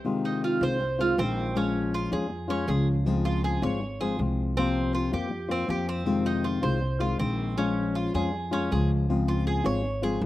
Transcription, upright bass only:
0.61 C2
1.18 A#1
2.12 F2
2.68 C#2
3.62 G#1
4.19 C2
5.13 F2
5.69 F2
6.63 C2
7.19 A#1
8.14 F2
8.71 C#2
9.64 G#1
10.21 C2

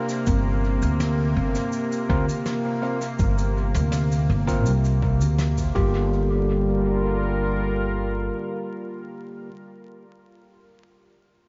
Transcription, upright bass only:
0.27 G1
0.83 D2
1.37 G1
2.10 D2
3.19 G1
3.75 D2
4.29 G1
4.66 C2
5.21 D2
5.76 G1

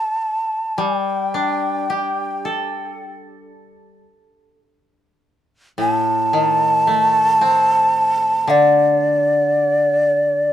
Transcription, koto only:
0.78 G3
1.34 D4
1.90 G4
2.45 A4
5.78 A2
6.33 D#3
6.87 A3
7.41 C4
8.47 D3

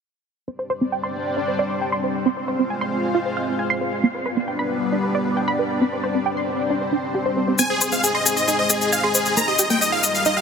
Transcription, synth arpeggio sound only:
0.48 C4
0.59 C5
0.70 C5
0.81 C4
0.92 G5
1.03 C6
1.37 D4
1.48 C5
1.59 D5
1.81 G5
1.92 C6
2.03 C5
2.26 C4
2.37 C5
2.48 C5
2.59 C4
2.70 G#5
2.81 C6
3.15 F4
3.26 C5
3.37 F5
3.59 G#5
3.70 C6
3.81 C5
4.03 B3
4.15 B4
4.26 B4
4.37 B3
4.48 G5
4.59 B5
4.92 D4
5.03 B4
5.15 D5
5.37 G5
5.48 B5
5.59 B4
5.81 C4
5.93 C5
6.04 C5
6.15 C4
6.26 G5
6.37 C6
6.70 D4
6.81 C5
6.92 D4
7.15 G4
7.26 C5
7.37 C4
7.48 C4
7.59 C4
7.70 C5
7.81 C5
7.92 C4
8.03 G#5
8.15 C6
8.48 D#4
8.59 C5
8.70 D#5
8.92 G#5
9.03 C6
9.15 C5
9.37 A#3
9.48 G4
9.59 G4
9.70 A#3
9.81 D#5
9.92 F5
10.26 D#4
10.37 G4

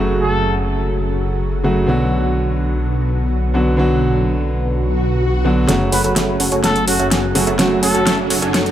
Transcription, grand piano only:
Already playing: C#3 F#3 A3
0.00 F#4
1.63 C#3 F#3 A3 F#4
1.87 D3 F#3 B3 F#4
3.54 D3 F#3 B3 F#4
3.77 D3 F#3 B3 F#4
5.44 D3 F#3 B3 F#4
5.68 C#3 F#3 A3 F#4
7.35 C#3 F#3 A3 F#4
7.58 C#3 F#3 A3 F#4

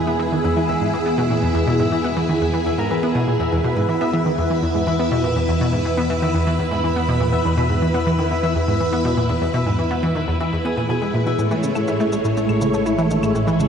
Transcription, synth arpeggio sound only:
0.07 B3
0.19 E3
0.32 D#3
0.44 E2
0.57 E3
0.69 E2
0.81 G#2
0.94 E3
1.06 B3
1.18 B2
1.30 A#2
1.43 E2
1.55 E2
1.67 B2
1.79 G#2
1.92 E3
2.04 B3
2.17 E3
2.29 D#3
2.42 E2
2.54 E3
2.66 E2
2.78 G#2
2.91 E3
3.03 B3
3.15 B2
3.27 A#2
3.40 E2
3.52 E2
3.64 B2
3.76 G#2
3.89 E3
4.01 B3
4.13 E3
4.26 D#3
4.38 E2
4.51 E3
4.63 E2
4.75 G#2
4.87 E3
4.99 B3
5.12 B2
5.24 A#2
5.36 E2
5.48 E2
5.61 B2
5.73 G#2
5.85 E3
5.98 B3
6.10 E3
6.22 D#3
6.34 E2
6.47 E3
6.59 E2
6.71 G#2
6.84 E3
6.96 B3
7.08 B2
7.21 A#2
7.33 E2
7.45 E2
7.57 B2
7.70 G#2
7.82 E3
7.94 B3
8.07 E3
8.19 D#3
8.31 E2
8.43 E3
8.55 E2
8.68 G#2
8.80 E3
8.93 B3
9.05 B2
9.17 A#2
9.29 E2
9.42 E2
9.54 B2
9.66 G#2
9.79 E3
9.91 B3
10.03 E3
10.15 D#3
10.28 E2
10.40 E3
10.53 E2
10.65 B3
10.77 A#2
10.89 B2
11.02 G#3
11.14 A#2
11.26 B2
11.39 A2
11.51 E3
11.63 C#3
11.75 A3
11.88 E4
12.00 A3
12.13 G#3
12.25 A2
12.37 A3
12.49 A2
12.62 C#3
12.74 A3
12.86 E4
12.98 E3
13.11 D#3
13.23 A2
13.35 A2
13.47 E3
13.60 C#3

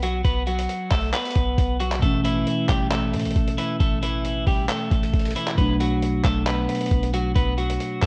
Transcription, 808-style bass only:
Already playing: B1
0.25 B1
0.91 B1
1.36 B1
1.58 B1
2.02 A1
2.69 A1
3.14 A2
3.25 A1
3.36 A1
3.80 A1
4.47 A1
4.91 A1
5.14 A1
5.58 B1
6.25 B1
6.91 B1
7.36 B1
8.02 B1

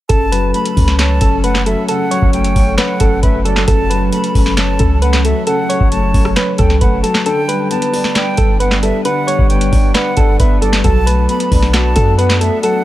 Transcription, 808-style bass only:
0.10 F#1
0.77 C#2
1.21 F#1
2.22 F#1
2.56 F#1
3.00 F#1
3.23 F#1
3.68 F#1
4.35 F#1
4.80 C#2
5.80 F#1
6.14 F#1
6.59 C#2
6.81 F#1
8.38 G1
9.39 G1
9.72 G1
10.17 G1
10.39 G1
10.84 B1
11.51 B1
11.96 F#2

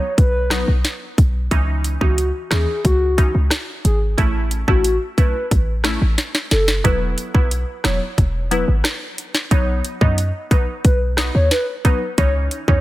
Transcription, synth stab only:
0.51 F#3 B3 D#4
1.51 E3 C#4 D#4
2.01 E3 C#4 D#4
2.51 E3 C#4 D#4
3.18 E3 C#4 D#4
4.18 A3 C#4 E4
4.68 A3 C#4 E4
5.18 A3 C#4 E4
5.84 A3 C#4 E4
6.84 F#3 B3 E4
7.34 F#3 B3 E4
7.84 F#3 B3 E4
8.51 F#3 B3 E4
9.51 F#3 B3 D#4
10.01 F#3 B3 D#4
10.51 F#3 B3 D#4
11.18 F#3 B3 D#4
11.85 F#3 B3 D#4
12.18 E3 C#4 D#4
12.68 E3 C#4 D#4

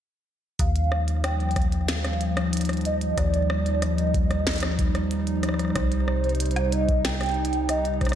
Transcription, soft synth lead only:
0.60 F5
1.24 G5
1.89 F5
2.85 D#5
3.18 D5
3.83 D#5
5.76 C5
6.73 D#5
7.05 G5
7.70 D#5
8.02 C5

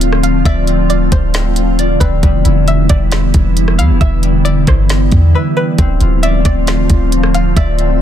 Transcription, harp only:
Already playing: C4 F4 D5
0.23 F4
0.46 D5
0.68 C4
0.90 F4
1.34 C4
1.79 D5
2.00 C4
2.23 G3
2.44 E4
2.68 E5
2.90 G3
3.12 E4
3.79 E4
4.01 E5
4.23 G3
4.45 E4
4.90 G3
5.34 E5
5.57 G3
5.79 C4
6.01 F4
6.24 D5
6.46 C4
6.67 F4
7.34 F4
7.57 D5
7.80 C4

